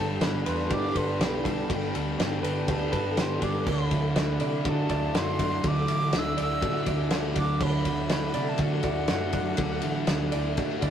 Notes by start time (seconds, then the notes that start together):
Already playing: G1 G3 B3 D4 G4 A4 B4 D5 G5 A5 B5
0.21 G1 B3 D4 B5, snare, ride
0.46 E2 A4 B4 C6, ride
0.69 G2 D4 G4 D6, kick, ride
0.95 G1 A4 B4 C6, kick, ride
1.19 B1 B3 G4, snare, ride
1.23 B5
1.44 G3 D4 A5, kick, ride
1.68 G1 G3, kick, ride
1.73 G5
1.93 D2 A4 B5, ride
2.18 G1 B3 D4, snare, ride
2.23 G5
2.43 G1 A4 B4, ride
2.67 D2 D4 G4 A5, kick, ride
2.92 G1 A4 B4, kick, ride
3.17 G1 B3 G4 C6, snare, ride
3.42 G1 G3 D4 D6, kick, ride
3.67 D2 D3 E5 F#5 D6, kick, crash
3.71 B5
3.91 D2 E4, kick, ride
4.16 D2 A3 D4 B5, snare, ride
4.40 C3 E4 D5, ride
4.65 D3 D4 F#4, kick, ride
4.69 A5
4.89 D2 E4 D5, kick, ride
5.15 F#2 A3 F#4 C6, snare, ride
5.39 F#3 D4, kick, ride
5.64 D2 D3, kick, ride
5.68 D6
5.88 A1 E4, ride
6.13 D2 A3 D4, snare, ride
6.19 E6
6.37 D2 E4 D5, ride
6.42 E6
6.62 A2 D4 F#4, kick, ride
6.86 D2 E4 D5, kick, ride
7.11 D2 A3 F#4, snare, ride
7.36 D2 F#3 D4 D6, kick, ride
7.61 D2 D3 B5, kick, crash
7.85 D2 E4, kick, ride
8.09 D2 A3 D4 B5, snare, ride
8.34 C3 E4 D5, ride
8.49 A5
8.58 D3 D4 F#4 F#5, kick, ride
8.83 D2 E4 D5, kick, ride
9.08 F#2 A3 F#4, snare, ride
9.33 F#3 D4, kick, ride
9.57 D2 D3, kick, ride
9.82 A1 E4, ride
10.07 D2 A3 D4, snare, ride
10.32 D2 E4 D5, ride
10.57 A2 D4 F#4, kick, ride
10.82 D2 E4 D5, kick, ride